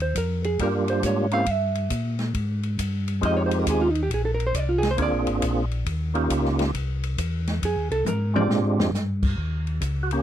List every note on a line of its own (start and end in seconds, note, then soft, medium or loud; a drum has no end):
0.00 0.14 D#2 medium
0.00 0.16 C5 medium
0.00 ride soft
0.15 0.58 F2 medium
0.15 0.45 A#4 medium
0.15 kick soft
0.15 hi-hat pedal medium
0.15 ride medium
0.44 0.59 G#4 medium
0.44 ride soft
0.59 1.02 G2 medium
0.59 1.27 G3 medium
0.59 1.27 A#3 medium
0.59 1.27 D4 medium
0.59 1.27 F4 medium
0.59 1.27 G4 medium
0.59 kick soft
0.59 ride medium
0.63 0.89 A#4 medium
0.88 1.04 C5 medium
0.88 ride soft
1.03 1.46 G#2 medium
1.03 1.33 C#5 medium
1.03 kick soft
1.03 hi-hat pedal medium
1.03 ride medium
1.31 1.46 A#3 medium
1.31 1.46 C4 medium
1.31 1.46 C#4 medium
1.31 1.46 E4 medium
1.31 1.46 G4 medium
1.31 1.51 F5 loud
1.31 ride soft
1.46 1.89 G2 medium
1.46 kick soft
1.46 ride medium
1.51 2.22 E5 medium
1.75 ride soft
1.90 2.33 A#2 medium
1.90 kick soft
1.90 hi-hat pedal medium
1.90 ride medium
2.19 snare soft
2.19 ride soft
2.34 2.77 G#2 medium
2.34 kick soft
2.34 ride medium
2.63 ride soft
2.78 3.21 G2 medium
2.78 kick soft
2.78 hi-hat pedal medium
2.78 ride medium
3.08 ride soft
3.21 3.65 F2 medium
3.21 3.89 G#3 medium
3.21 3.89 C4 medium
3.21 3.89 D#4 medium
3.21 3.90 F4 medium
3.21 3.90 G4 medium
3.21 kick soft
3.21 ride medium
3.26 3.38 D#5 medium
3.37 3.46 C#5 medium
3.46 3.59 C5 medium
3.51 ride medium
3.59 3.66 A#4 medium
3.66 4.09 D#2 medium
3.66 3.82 G#4 medium
3.66 kick soft
3.66 hi-hat pedal medium
3.66 ride medium
3.81 3.90 F4 medium
3.90 4.00 D#4 medium
3.95 ride soft
4.03 4.10 G4 medium
4.10 4.53 A#1 loud
4.10 kick soft
4.10 ride medium
4.14 4.25 G#4 medium
4.25 4.34 A4 medium
4.34 4.44 A#4 medium
4.40 ride soft
4.47 4.54 C5 medium
4.54 4.97 C2 loud
4.54 4.70 D5 loud
4.54 kick soft
4.54 hi-hat pedal medium
4.54 ride medium
4.69 4.83 F4 medium
4.78 4.88 G#4 loud
4.83 snare soft
4.83 ride medium
4.91 4.98 C5 medium
4.97 5.12 D2 medium
4.97 5.65 A#3 medium
4.97 5.65 C4 medium
4.97 5.65 D4 medium
4.97 5.65 F4 medium
4.97 5.65 G#4 medium
4.97 kick soft
4.97 ride medium
5.02 5.84 D5 medium
5.11 5.27 A#1 medium
5.26 5.40 G#1 medium
5.26 ride medium
5.42 5.85 A#1 loud
5.42 kick soft
5.42 hi-hat pedal medium
5.42 ride medium
5.71 ride soft
5.86 6.29 D#2 medium
5.86 kick soft
5.86 ride medium
6.14 6.70 A#3 medium
6.14 6.71 C#4 medium
6.14 6.71 D#4 medium
6.14 6.71 F4 medium
6.14 6.71 G4 medium
6.14 ride soft
6.30 6.73 C#2 loud
6.30 kick soft
6.30 hi-hat pedal medium
6.30 ride medium
6.45 snare soft
6.59 snare soft
6.59 ride medium
6.74 7.17 C2 medium
6.74 kick soft
6.74 ride medium
7.03 ride medium
7.18 7.60 E2 medium
7.18 kick soft
7.18 hi-hat pedal medium
7.18 ride medium
7.47 snare soft
7.47 ride soft
7.62 7.76 F2 loud
7.62 7.91 G#4 medium
7.62 kick soft
7.62 ride medium
7.76 7.91 D#2 medium
7.90 8.04 C2 medium
7.90 8.06 A4 loud
7.90 ride soft
8.05 8.48 G#2 loud
8.05 8.35 A#4 medium
8.05 floor tom medium
8.05 hi-hat pedal medium
8.34 8.90 G#3 medium
8.34 8.90 C4 medium
8.34 8.91 D4 medium
8.34 8.91 F4 medium
8.34 8.91 G4 medium
8.34 8.76 D5 loud
8.34 floor tom medium
8.49 8.63 A#2 medium
8.49 snare medium
8.64 8.79 G#2 medium
8.78 8.92 F2 medium
8.78 snare loud
8.93 9.36 G2 loud
8.93 snare medium
8.93 hi-hat pedal medium
9.23 kick medium
9.23 crash medium
9.38 9.80 D#2 medium
9.38 kick soft
9.67 ride soft
9.81 10.22 C#2 medium
9.81 kick soft
9.81 hi-hat pedal medium
9.81 ride medium
10.03 10.11 F#4 medium
10.11 10.22 A#3 medium
10.11 10.22 C#4 medium
10.11 10.22 G4 medium
10.11 ride soft